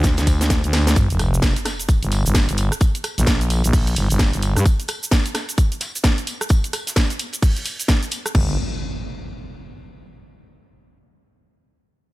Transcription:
Already playing: fm bass D2, analog synth pad A3 D4 F4 D5
0.03 kick, snare, closed hi-hat, ride, tambourine, cabasa
0.17 fm bass D2, snare, closed hi-hat, cabasa
0.27 kick, open hi-hat, ride, tambourine
0.41 snare, closed hi-hat, cabasa
0.50 kick, snare, closed hi-hat, ride, tambourine, cabasa
0.64 fm bass D2, closed hi-hat, cabasa
0.73 snare, open hi-hat, ride, tambourine
0.87 snare, closed hi-hat, cabasa
0.96 fm bass G1, kick, closed hi-hat, tambourine, sub drop, cabasa
1.10 fm bass F1, closed hi-hat, cabasa
1.19 cross-stick, open hi-hat, tambourine
1.34 cabasa
1.42 kick, snare, closed hi-hat, tambourine, cabasa
1.56 closed hi-hat, cabasa
1.65 cross-stick, snare, open hi-hat, tambourine
1.79 closed hi-hat, cabasa
1.88 kick, closed hi-hat, tambourine, cabasa
2.03 fm bass G1, closed hi-hat, cabasa
2.12 snare, open hi-hat, tambourine
2.26 fm bass G1, closed hi-hat, cabasa
2.35 kick, snare, closed hi-hat, tambourine, cabasa
2.49 fm bass G1, closed hi-hat, cabasa
2.57 open hi-hat, tambourine
2.72 cross-stick, closed hi-hat, cabasa
2.81 kick, closed hi-hat, tambourine, cabasa
2.95 closed hi-hat, cabasa
3.04 cross-stick, open hi-hat, tambourine
3.18 fm bass A#1, snare, open hi-hat, cabasa
3.26 kick, snare, closed hi-hat, tambourine, cabasa
3.41 closed hi-hat, cabasa
3.50 open hi-hat, tambourine
3.64 fm bass A#1, closed hi-hat, cabasa
3.73 kick, closed hi-hat, open hi-hat, cabasa
3.87 closed hi-hat, cabasa
3.96 fm bass G1, open hi-hat, tambourine
4.10 fm bass G1, closed hi-hat, cabasa
4.19 kick, snare, closed hi-hat, tambourine, cabasa
4.33 fm bass G1, closed hi-hat, cabasa
4.42 open hi-hat, tambourine
4.56 fm bass G2, cross-stick, closed hi-hat, cabasa
4.65 kick, closed hi-hat, tambourine, cabasa
4.80 closed hi-hat, cabasa
4.88 cross-stick, open hi-hat, tambourine
5.03 cabasa
5.11 kick, snare, closed hi-hat, tambourine, cabasa
5.25 closed hi-hat, cabasa
5.35 cross-stick, snare, open hi-hat, tambourine
5.49 closed hi-hat, cabasa
5.58 kick, closed hi-hat, tambourine, cabasa
5.72 closed hi-hat, cabasa
5.81 snare, open hi-hat, tambourine
5.96 closed hi-hat, cabasa
6.04 kick, snare, closed hi-hat, tambourine, cabasa
6.18 closed hi-hat, cabasa
6.27 open hi-hat, tambourine
6.41 cross-stick, closed hi-hat, cabasa
6.49 kick, closed hi-hat, tambourine, cabasa
6.64 closed hi-hat, cabasa
6.73 cross-stick, open hi-hat, tambourine
6.87 snare, open hi-hat, cabasa
6.96 kick, snare, closed hi-hat, tambourine, cabasa
7.10 closed hi-hat, cabasa
7.19 open hi-hat, tambourine
7.33 closed hi-hat, cabasa
7.42 kick, closed hi-hat, open hi-hat, cabasa
7.56 closed hi-hat, cabasa
7.64 open hi-hat, tambourine
7.79 closed hi-hat, cabasa
7.88 kick, snare, closed hi-hat, tambourine, cabasa
8.03 closed hi-hat, cabasa
8.11 open hi-hat, tambourine
8.26 cross-stick, closed hi-hat, cabasa
8.35 fm bass G1, kick, crash, impact

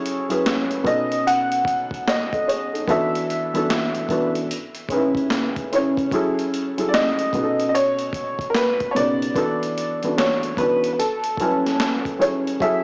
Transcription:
Already playing: felt piano F#3 C#4 E4 G#4 A4, upright piano C#5
0.06 closed hi-hat
0.29 felt piano F#3 C#4 E4 G#4 B4, closed hi-hat
0.46 snare, closed hi-hat
0.71 closed hi-hat
0.84 felt piano B2 B3 C#4 D#4 A4, upright piano D#5, kick, closed hi-hat
1.12 closed hi-hat
1.27 upright piano F#5, closed hi-hat
1.52 closed hi-hat
1.65 kick, closed hi-hat
1.91 kick, closed hi-hat
2.07 felt piano C#5 F#5, upright piano D#5, snare, closed hi-hat
2.33 felt piano A4 D#5, kick, closed hi-hat
2.48 felt piano G#4 C#5, closed hi-hat
2.73 felt piano D#4 A4, closed hi-hat
2.88 felt piano E3 B3 D4 F#4 A4, upright piano E5, kick, closed hi-hat
3.15 closed hi-hat
3.30 closed hi-hat
3.54 felt piano E3 B3 D4 F#4 A4, closed hi-hat
3.70 snare, closed hi-hat
3.95 closed hi-hat
4.09 felt piano E3 B3 D4 F#4 B4, kick, closed hi-hat
4.35 closed hi-hat
4.51 closed hi-hat
4.75 closed hi-hat
4.89 felt piano C#3 C#4 D#4 G#4 B4, kick, closed hi-hat
4.97 felt piano E4
5.15 kick, closed hi-hat
5.30 snare, closed hi-hat
5.56 kick, closed hi-hat
5.72 felt piano C#3 C#4 E4 G#4 C#5, closed hi-hat
5.97 kick, closed hi-hat
6.11 felt piano F#3 C#4 E4 G#4 A4, kick, closed hi-hat
6.39 closed hi-hat
6.54 closed hi-hat
6.77 felt piano F#3 C#4 E4 G#4 A4, closed hi-hat
6.88 upright piano D5
6.94 upright piano D#5, snare, closed hi-hat
7.19 closed hi-hat
7.33 felt piano B2 B3 C#4 D#4 G#4, kick, closed hi-hat
7.43 felt piano A4
7.60 closed hi-hat
7.69 upright piano D#5
7.75 upright piano C#5, closed hi-hat
7.99 closed hi-hat
8.13 kick, closed hi-hat
8.39 kick, closed hi-hat
8.50 upright piano A#4
8.55 upright piano B4, snare, closed hi-hat
8.80 kick, closed hi-hat
8.91 felt piano B2, upright piano C#5
8.95 felt piano C#3 B3 D#4 F#4, upright piano D5, closed hi-hat
9.22 closed hi-hat
9.34 felt piano E3 B3 D4 F#4 A4, kick, closed hi-hat
9.63 closed hi-hat
9.78 closed hi-hat
10.03 felt piano E3 B3 D4 F#4 A4, closed hi-hat
10.18 upright piano C#5, snare, closed hi-hat
10.43 closed hi-hat
10.57 felt piano E3 B3 D4 F#4 B4, upright piano B4, kick, closed hi-hat
10.84 closed hi-hat
10.93 upright piano B4
10.99 upright piano A4, closed hi-hat
11.24 closed hi-hat
11.37 felt piano F#3 C#4 E4, kick, closed hi-hat
11.42 felt piano A4 B4 G#5
11.66 snare, closed hi-hat
11.80 snare, closed hi-hat
12.05 kick, closed hi-hat
12.19 felt piano F#3 C#4 E4 G#4 A4 C#5, closed hi-hat
12.47 closed hi-hat
12.60 felt piano F#3 C#4 E4 G#4 A4, upright piano E5, kick, closed hi-hat

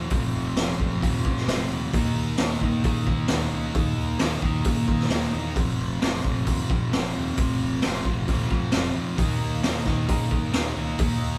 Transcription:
Already playing: distorted electric guitar C3 F3
0.10 fingered electric bass F1, distorted electric guitar F2 C3 F3, kick, open hi-hat
0.34 fingered electric bass F1
0.56 fingered electric bass F1, distorted electric guitar F2 C3 F3, snare, open hi-hat
0.78 fingered electric bass F1, distorted electric guitar C3 F3, kick
1.02 fingered electric bass D#2, distorted electric guitar F2 C3 F3, kick, open hi-hat
1.25 fingered electric bass F2, kick
1.36 snare
1.47 fingered electric bass F1, distorted electric guitar F2 C3 F3, snare, open hi-hat
1.70 fingered electric bass D#2, distorted electric guitar C3 F3
1.93 fingered electric bass D#2, distorted electric guitar D#3 A#3 D#4, kick, open hi-hat
2.16 fingered electric bass D#2
2.38 fingered electric bass D#2, distorted electric guitar D#3 A#3, snare, open hi-hat
2.42 distorted electric guitar D#4
2.61 fingered electric bass D#2, distorted electric guitar D#4, kick
2.65 distorted electric guitar A#3
2.84 fingered electric bass C#3, distorted electric guitar D#3 A#3 D#4, kick, open hi-hat
3.07 fingered electric bass D#3, kick
3.28 fingered electric bass D#2, distorted electric guitar D#3 A#3 D#4, snare, open hi-hat
3.51 fingered electric bass C#2, distorted electric guitar A#3 D#4
3.74 fingered electric bass D#2, distorted electric guitar D#3 A#3 D#4, kick, open hi-hat
3.97 fingered electric bass D#2
4.19 fingered electric bass D#2, distorted electric guitar D#3 A#3 D#4, snare, open hi-hat
4.42 fingered electric bass D#2, distorted electric guitar A#3 D#4, kick
4.64 fingered electric bass C#3, distorted electric guitar D#3 A#3 D#4, kick, open hi-hat
4.88 fingered electric bass D#3, kick
5.00 snare
5.09 fingered electric bass D#2, distorted electric guitar D#3 A#3 D#4, snare, open hi-hat
5.32 fingered electric bass E2, distorted electric guitar A#3 D#4
5.55 fingered electric bass F1, distorted electric guitar F2 C3 F3, kick, open hi-hat
5.79 fingered electric bass F1
6.00 fingered electric bass F1, distorted electric guitar F2 C3 F3, snare, open hi-hat
6.23 fingered electric bass F1, distorted electric guitar C3 F3, kick
6.45 fingered electric bass D#2, distorted electric guitar F2 C3 F3, kick, open hi-hat
6.69 fingered electric bass F2, kick
6.90 fingered electric bass F1, distorted electric guitar F2 C3 F3, snare, open hi-hat
7.14 fingered electric bass D#2, distorted electric guitar C3 F3
7.36 fingered electric bass F1, distorted electric guitar F2 C3 F3, kick, open hi-hat
7.62 fingered electric bass F1
7.82 fingered electric bass F1, distorted electric guitar F2 C3 F3, snare, open hi-hat
8.05 fingered electric bass F1, distorted electric guitar C3 F3, kick
8.28 fingered electric bass D#2, distorted electric guitar F2 C3 F3, kick, open hi-hat
8.51 fingered electric bass F2, kick
8.72 fingered electric bass F1, distorted electric guitar F2 C3 F3, snare, open hi-hat
8.95 fingered electric bass F2, distorted electric guitar C3 F3
9.18 fingered electric bass D#2, distorted electric guitar D#3 A#3 D#4, kick, open hi-hat
9.41 fingered electric bass D#2
9.63 fingered electric bass D#2, distorted electric guitar D#3 A#3 D#4, snare, open hi-hat
9.85 fingered electric bass D#2, distorted electric guitar A#3 D#4, kick, snare
10.07 fingered electric bass C#3, distorted electric guitar D#3 A#3 D#4, kick, open hi-hat
10.31 fingered electric bass D#3, kick
10.52 fingered electric bass D#2, distorted electric guitar D#3 A#3 D#4, snare, open hi-hat
10.76 fingered electric bass C#2, distorted electric guitar A#3 D#4
10.99 fingered electric bass D#2, distorted electric guitar D#3 A#3 D#4, kick, open hi-hat
11.21 fingered electric bass D#2

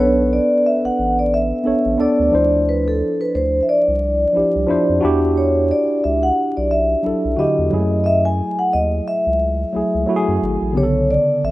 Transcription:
Already playing: tine electric piano B3 A4
0.00 analog synth bass B1, tine electric piano D4 B4, vibraphone C#5
0.33 vibraphone D5
0.66 vibraphone E5
0.85 analog synth bass A1, vibraphone F#5
0.99 analog synth bass A1
1.19 vibraphone D5
1.34 vibraphone E5
1.64 analog synth bass A1, tine electric piano B3 D4 A4 C#5
1.86 analog synth bass A1
1.98 analog synth bass D2, tine electric piano B3 D4 A4 D5, vibraphone D5
2.19 analog synth bass D2
2.31 analog synth bass D2, tine electric piano F3 D4 E4 C5
2.69 vibraphone B4
2.88 vibraphone A4
3.21 vibraphone B4
3.35 analog synth bass D2, vibraphone C5
3.63 vibraphone E5
3.69 vibraphone D5
3.88 analog synth bass C2
4.33 analog synth bass C2, tine electric piano F3 D4 E4 G4
4.56 analog synth bass C2
4.67 analog synth bass F2, tine electric piano F3 D4 E4 C5
4.90 analog synth bass F2
5.01 analog synth bass E2, tine electric piano D4 E4 F#4
5.05 tine electric piano G4
5.37 vibraphone C#5
5.71 vibraphone D5
6.04 analog synth bass C#2, vibraphone E5
6.23 vibraphone F#5
6.57 analog synth bass B1, vibraphone D5
6.71 vibraphone E5
7.03 analog synth bass B1, tine electric piano F#3 D4 E4 A4
7.25 analog synth bass B1
7.36 analog synth bass E2, tine electric piano D3 E4 F#4 G4, vibraphone D#5
7.59 analog synth bass E2
7.70 analog synth bass F#2, tine electric piano F#3 G#3 E4 G#4
7.78 tine electric piano A3
8.04 vibraphone D#5 E5
8.25 vibraphone G#5
8.59 vibraphone F#5
8.73 analog synth bass D#2, vibraphone D#5
9.08 vibraphone E5
9.27 analog synth bass C#2
9.73 analog synth bass C#2, tine electric piano F#3 A3 E4 G#4
9.95 analog synth bass C#2
10.06 tine electric piano F#3 A3 E4 F#4
10.16 tine electric piano G#4
10.28 analog synth bass F#2
10.43 analog synth bass G#1
10.62 analog synth bass A1
10.73 analog synth bass B1, tine electric piano C#3 D3 B3 G4
10.77 vibraphone C#5
10.83 tine electric piano A4
11.11 vibraphone D5
11.44 analog synth bass A1, vibraphone E5

